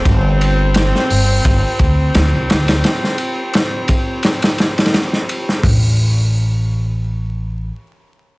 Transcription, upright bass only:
X:1
M:4/4
L:1/16
Q:"Swing 16ths" 1/4=86
K:Gmix
V:1 name="Upright bass" clef=bass
G,,,4- G,,, z G,,,2 G,,, z D,,2 D,, C,, D,,2 | z16 | A,,,12 z4 |]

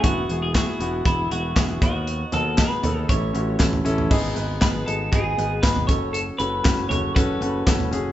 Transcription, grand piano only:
X:1
M:4/4
L:1/8
Q:1/4=118
K:G#phr
V:1 name="Grand piano"
[B,EF] [B,EG] [B,EG] [B,EF] [B,EF] [B,EF] [B,EG] [B,DF]- | [B,DF] [B,DF] [B,DG] [B,DA] [CEA] [CEF] [CEA] [CEA] | [B,DG] [B,DB] [B,DG] [B,DG] [B,DG] [B,DB] [B,DG] [CFA]- | [CFA] [CFA] [CFB] [CFA] [CFA] [CFA] [CFA] [CFG] |]
V:2 name="Grand piano" clef=bass
E,3 z4 D,- | D,2 z2 A,,3 z | G,,3 z4 z | z8 |]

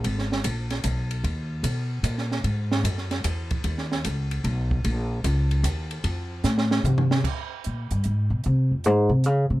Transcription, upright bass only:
X:1
M:3/4
L:1/8
Q:"Swing" 1/4=150
K:G#dor
V:1 name="Upright bass" clef=bass
G,,,2 A,,,2 B,,,2 | D,,2 B,,2 A,,2 | G,,2 F,,2 =E,,2 | D,,2 C,,2 B,,,2 |
A,,,2 C,,2 D,,2 | =F,,2 =A,,2 =C,2 | [K:Bbdor] z2 B,, G,, A,, _C, | C, F,, A,, C, D, C, |]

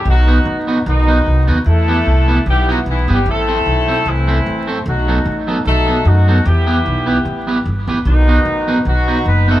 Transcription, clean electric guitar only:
X:1
M:4/4
L:1/16
Q:"Swing" 1/4=150
K:Em
V:1 name="Clean electric guitar"
z2 [B,^DFB] z3 [B,DFB] z3 [B,DFB] z3 [B,DFB] z | z2 [B,EGB] z3 [B,EGB] z3 [B,EGB] z3 [B,EGB] z | z2 [A,CEA] z3 [A,CEA] z3 [A,CEA] z3 [A,CEA] z | z2 [F,B,^DA] z3 [F,B,DA] z3 [F,B,DA] z3 [F,B,DA] z |
z2 [B,EGB] z3 [B,EGB] z3 [B,EGB] z3 [B,EGB] z | z2 [B,^DFB] z3 [B,DFB] z3 [B,DFB] z3 [B,DFB] z |]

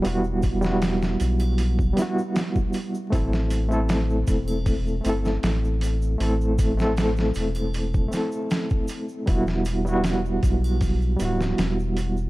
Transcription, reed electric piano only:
X:1
M:4/4
L:1/16
Q:1/4=78
K:Em
V:1 name="Reed electric piano"
[G,B,EF]3 [G,B,EF] z6 [G,B,EF]6 | [A,CEA]3 [A,CEA] z6 [A,CEA]6 | [A,CEA]3 [A,CEA] z6 [A,CEA]6 | [G,B,EF]3 [G,B,EF] z6 [G,B,EF]6 |]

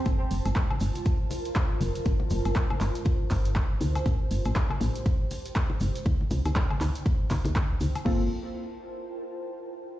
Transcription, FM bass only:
X:1
M:4/4
L:1/16
Q:"Swing 16ths" 1/4=120
K:Gdor
V:1 name="FM bass" clef=bass
G,,, z F,,, G,,, z2 G,,, z6 z F,,, z | G,,, z F,,, G,,, z2 G,,, z3 G,,,3 z D,, z | A,,, z G,,, A,,, z2 A,,, z6 z G,,, z | D,, z C,, D,, z2 D,, z3 D,, D,,2 z D,, z |
G,,,2 z12 z2 |]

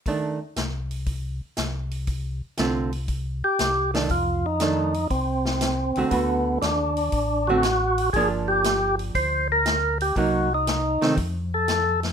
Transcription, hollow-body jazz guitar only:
X:1
M:4/4
L:1/8
Q:"Swing" 1/4=119
K:Fmix
V:1 name="Hollow-body jazz guitar"
[E,A,D] z6 z | z2 [D,A,CF] z4 [E,A,D] | z2 [E,A,D] z4 [D,A,C_G] | [D,A,^F]3 z2 [D,A,CF] z2 |
[F,B,D]4- [F,B,D] z3 | [_G,B,E] z2 [E,A,C] z4 |]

